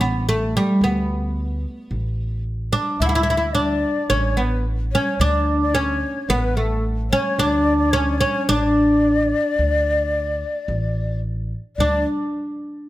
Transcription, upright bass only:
0, 0, Header, 1, 2, 480
1, 0, Start_track
1, 0, Tempo, 548446
1, 715, Time_signature, 4, 2, 24, 8
1, 11283, End_track
2, 0, Start_track
2, 0, Title_t, "Upright bass"
2, 0, Program_c, 0, 32
2, 0, Note_on_c, 0, 33, 86
2, 480, Note_off_c, 0, 33, 0
2, 711, Note_on_c, 0, 38, 80
2, 1439, Note_off_c, 0, 38, 0
2, 1669, Note_on_c, 0, 33, 85
2, 2398, Note_off_c, 0, 33, 0
2, 2628, Note_on_c, 0, 38, 80
2, 3357, Note_off_c, 0, 38, 0
2, 3590, Note_on_c, 0, 33, 80
2, 4318, Note_off_c, 0, 33, 0
2, 4548, Note_on_c, 0, 38, 94
2, 5277, Note_off_c, 0, 38, 0
2, 5502, Note_on_c, 0, 33, 90
2, 6234, Note_off_c, 0, 33, 0
2, 6464, Note_on_c, 0, 38, 90
2, 7195, Note_off_c, 0, 38, 0
2, 7429, Note_on_c, 0, 33, 82
2, 8158, Note_off_c, 0, 33, 0
2, 8391, Note_on_c, 0, 38, 80
2, 9120, Note_off_c, 0, 38, 0
2, 9349, Note_on_c, 0, 33, 82
2, 10080, Note_off_c, 0, 33, 0
2, 10311, Note_on_c, 0, 38, 80
2, 10537, Note_off_c, 0, 38, 0
2, 11283, End_track
0, 0, End_of_file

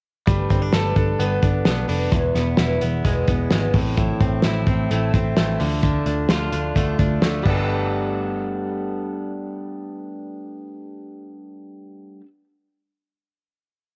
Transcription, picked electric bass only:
0, 0, Header, 1, 2, 480
1, 0, Start_track
1, 0, Tempo, 463320
1, 277, Time_signature, 4, 2, 24, 8
1, 14461, End_track
2, 0, Start_track
2, 0, Title_t, "Picked electric bass"
2, 0, Program_c, 0, 34
2, 276, Note_on_c, 0, 31, 88
2, 473, Note_off_c, 0, 31, 0
2, 515, Note_on_c, 0, 31, 76
2, 712, Note_off_c, 0, 31, 0
2, 751, Note_on_c, 0, 31, 91
2, 950, Note_off_c, 0, 31, 0
2, 994, Note_on_c, 0, 31, 85
2, 1192, Note_off_c, 0, 31, 0
2, 1234, Note_on_c, 0, 31, 98
2, 1431, Note_off_c, 0, 31, 0
2, 1480, Note_on_c, 0, 31, 94
2, 1675, Note_off_c, 0, 31, 0
2, 1715, Note_on_c, 0, 35, 78
2, 1912, Note_off_c, 0, 35, 0
2, 1958, Note_on_c, 0, 29, 80
2, 2154, Note_off_c, 0, 29, 0
2, 2199, Note_on_c, 0, 28, 86
2, 2395, Note_off_c, 0, 28, 0
2, 2440, Note_on_c, 0, 28, 82
2, 2635, Note_off_c, 0, 28, 0
2, 2684, Note_on_c, 0, 28, 88
2, 2878, Note_off_c, 0, 28, 0
2, 2926, Note_on_c, 0, 28, 82
2, 3119, Note_off_c, 0, 28, 0
2, 3157, Note_on_c, 0, 28, 106
2, 3354, Note_off_c, 0, 28, 0
2, 3399, Note_on_c, 0, 28, 93
2, 3596, Note_off_c, 0, 28, 0
2, 3642, Note_on_c, 0, 32, 84
2, 3837, Note_off_c, 0, 32, 0
2, 3877, Note_on_c, 0, 33, 88
2, 4272, Note_off_c, 0, 33, 0
2, 4359, Note_on_c, 0, 33, 86
2, 4556, Note_off_c, 0, 33, 0
2, 4603, Note_on_c, 0, 33, 86
2, 4799, Note_off_c, 0, 33, 0
2, 4838, Note_on_c, 0, 33, 85
2, 5035, Note_off_c, 0, 33, 0
2, 5086, Note_on_c, 0, 33, 94
2, 5281, Note_off_c, 0, 33, 0
2, 5322, Note_on_c, 0, 33, 92
2, 5518, Note_off_c, 0, 33, 0
2, 5570, Note_on_c, 0, 33, 75
2, 5764, Note_off_c, 0, 33, 0
2, 5807, Note_on_c, 0, 38, 93
2, 6199, Note_off_c, 0, 38, 0
2, 6278, Note_on_c, 0, 38, 92
2, 6477, Note_off_c, 0, 38, 0
2, 6517, Note_on_c, 0, 38, 96
2, 6716, Note_off_c, 0, 38, 0
2, 6758, Note_on_c, 0, 38, 83
2, 6957, Note_off_c, 0, 38, 0
2, 7001, Note_on_c, 0, 38, 92
2, 7199, Note_off_c, 0, 38, 0
2, 7243, Note_on_c, 0, 38, 89
2, 7440, Note_off_c, 0, 38, 0
2, 7473, Note_on_c, 0, 38, 84
2, 7674, Note_off_c, 0, 38, 0
2, 7722, Note_on_c, 0, 31, 92
2, 12625, Note_off_c, 0, 31, 0
2, 14461, End_track
0, 0, End_of_file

